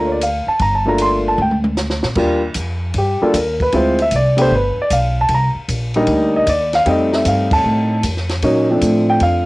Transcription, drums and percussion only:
0.21 hi-hat pedal, ride
0.59 kick, ride
0.98 hi-hat pedal, ride
1.38 mid tom
1.51 mid tom
1.64 mid tom
1.77 snare, hi-hat pedal
1.90 snare
2.03 snare
2.15 kick, crash
2.54 kick, hi-hat pedal, ride
2.94 kick, ride
3.34 kick, hi-hat pedal, ride
3.60 kick, ride
3.72 kick, ride
3.99 ride
4.11 kick, hi-hat pedal, ride
4.38 ride
4.51 kick
4.90 kick, hi-hat pedal, ride
5.28 kick, ride
5.68 kick, hi-hat pedal, ride
5.94 ride
6.07 kick, ride
6.47 kick, hi-hat pedal, ride
6.73 snare, ride
6.86 kick, ride
7.13 snare
7.25 kick, hi-hat pedal, ride
7.51 kick, ride
8.03 kick, hi-hat pedal, ride
8.17 snare
8.29 snare, ride
8.42 kick, ride
8.81 kick, hi-hat pedal, ride
9.20 kick, ride

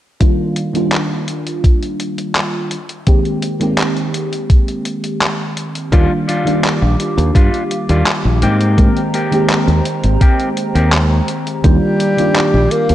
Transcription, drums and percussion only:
0.21 kick, closed hi-hat
0.56 closed hi-hat
0.75 closed hi-hat
0.92 clap, closed hi-hat
1.28 closed hi-hat
1.47 closed hi-hat
1.64 kick, closed hi-hat
1.82 closed hi-hat
2.00 closed hi-hat
2.18 closed hi-hat
2.35 clap, closed hi-hat
2.71 closed hi-hat
2.89 closed hi-hat
3.06 kick, closed hi-hat
3.25 closed hi-hat
3.42 closed hi-hat
3.61 closed hi-hat
3.78 clap, closed hi-hat
3.96 closed hi-hat
4.14 closed hi-hat
4.33 closed hi-hat
4.50 kick, closed hi-hat
4.68 closed hi-hat
4.85 closed hi-hat
5.04 closed hi-hat
5.22 clap, closed hi-hat
5.57 closed hi-hat
5.75 closed hi-hat
5.92 kick, closed hi-hat
6.29 closed hi-hat
6.47 closed hi-hat
6.65 clap, closed hi-hat
7.00 closed hi-hat
7.18 closed hi-hat
7.35 kick, closed hi-hat
7.54 closed hi-hat
7.71 closed hi-hat
7.89 closed hi-hat
8.07 clap, closed hi-hat
8.42 closed hi-hat
8.61 closed hi-hat
8.78 kick, closed hi-hat
8.97 closed hi-hat
9.14 closed hi-hat
9.32 closed hi-hat
9.50 clap, closed hi-hat
9.68 closed hi-hat
9.85 closed hi-hat
10.04 closed hi-hat
10.21 kick, closed hi-hat
10.40 closed hi-hat
10.57 closed hi-hat
10.75 closed hi-hat
10.92 clap, closed hi-hat
11.28 closed hi-hat
11.47 closed hi-hat
11.64 kick, closed hi-hat
12.00 closed hi-hat
12.18 closed hi-hat
12.36 clap, closed hi-hat
12.71 closed hi-hat
12.89 closed hi-hat

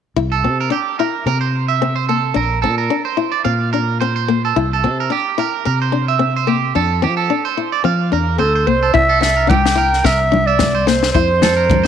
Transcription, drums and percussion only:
8.95 kick, muted conga
9.22 snare, muted conga
9.50 kick, high conga
9.66 snare
9.93 snare
10.05 kick, snare, muted conga
10.34 high conga
10.59 kick, snare, high conga
10.87 snare
11.03 snare
11.15 kick, muted conga
11.42 snare, muted conga, high conga
11.70 kick, high conga, low conga

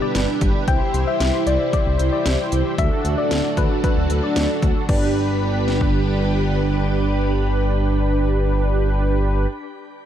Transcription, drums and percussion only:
0.15 snare, closed hi-hat
0.41 kick, closed hi-hat
0.68 kick, closed hi-hat
0.94 closed hi-hat
1.20 snare, closed hi-hat
1.47 closed hi-hat
1.73 kick, closed hi-hat
1.99 closed hi-hat
2.26 snare, closed hi-hat
2.52 closed hi-hat
2.78 kick, closed hi-hat
3.05 closed hi-hat
3.31 snare, closed hi-hat
3.57 kick, closed hi-hat
3.84 kick, closed hi-hat
4.10 closed hi-hat
4.36 snare, closed hi-hat
4.62 kick, closed hi-hat
4.89 kick, crash
5.68 snare
5.81 kick

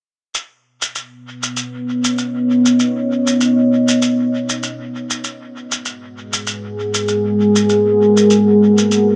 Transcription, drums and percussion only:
0.34 shaker
0.82 shaker
0.95 shaker
1.43 shaker
1.57 shaker
2.04 shaker
2.18 shaker
2.66 shaker
2.79 shaker
3.27 shaker
3.41 shaker
3.88 shaker
4.02 shaker
4.49 shaker
4.63 shaker
5.10 shaker
5.24 shaker
5.72 shaker
5.85 shaker
6.33 shaker
6.47 shaker
6.94 shaker
7.08 shaker
7.56 shaker
7.69 shaker
8.17 shaker
8.30 shaker
8.78 shaker
8.91 shaker

